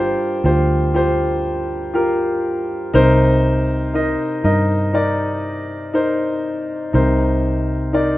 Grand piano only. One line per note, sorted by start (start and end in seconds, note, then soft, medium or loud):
0.00 0.41 G2 medium
0.00 0.44 F4 medium
0.00 0.45 G4 medium
0.00 1.95 A#4 loud
0.00 0.46 C5 medium
0.00 2.96 A5 medium
0.44 0.92 F4 medium
0.44 0.92 G4 medium
0.44 0.92 C5 medium
0.94 1.89 F4 medium
0.94 1.90 G4 medium
0.94 1.90 C5 medium
1.94 2.89 F4 medium
1.94 2.89 G4 medium
1.94 2.90 A#4 medium
2.94 4.40 C3 medium
2.94 3.89 D#4 medium
2.94 3.89 A#4 medium
2.94 3.90 C5 loud
3.94 4.42 D#4 medium
3.94 4.42 A#4 medium
3.94 4.42 D#5 medium
4.44 4.91 D#4 medium
4.44 4.92 A#4 medium
4.44 4.92 D#5 medium
4.93 5.89 D#4 medium
4.93 5.89 A#4 medium
4.93 5.89 D5 medium
5.94 6.89 D#4 medium
5.94 6.89 A#4 medium
5.94 6.90 C5 medium
6.93 8.18 C3 medium
6.93 7.89 D#4 medium
6.93 7.89 A#4 medium
6.93 7.89 C5 medium
7.93 8.18 D#4 medium
7.93 8.18 A#4 medium
7.93 8.18 D5 medium